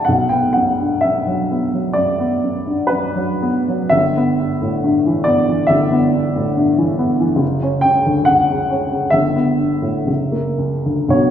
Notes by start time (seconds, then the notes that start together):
Already playing: D5 E5 F#5 G5 A5
0.05 B1 F#5
0.29 B3 G5
0.53 F#2 F#5
0.80 G2
1.01 F#2 E5
1.27 F#3
1.51 B3
1.73 F#3
1.93 F#2 D5
2.20 B3
2.44 F#2
2.67 G2
2.87 F#2 B4
3.15 F#3
3.42 B3
3.68 F#3
3.89 G1 E5
4.17 B3
4.40 G2
4.62 A2
4.84 G2
5.06 E3
5.24 B3 D5
5.49 E3
5.67 G1 E5
5.92 B3
6.14 G2
6.36 A2
6.57 G2
6.78 E3
6.99 B3
7.20 E3
7.36 F#1
7.63 C#4
7.81 C#2 G5
8.07 D2
8.25 C#2 F#5
8.50 C#3
8.71 C#4
8.92 C#3
9.10 G1 E5
9.36 B3
9.58 G2
9.82 A2
10.07 F#1
10.32 A#3
10.58 C#2
10.86 D2
11.09 B1 D3 B3 F#4 C#5